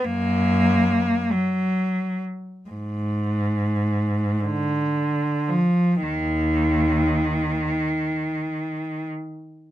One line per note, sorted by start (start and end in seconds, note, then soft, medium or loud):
0.04 1.28 F#2 soft
0.04 1.32 A#3 medium
1.32 2.23 F#3 soft
2.69 4.39 G#2 soft
4.43 5.48 D3 soft
5.49 6.03 F3 soft
6.03 7.66 D#2 soft
6.03 9.07 D#3 soft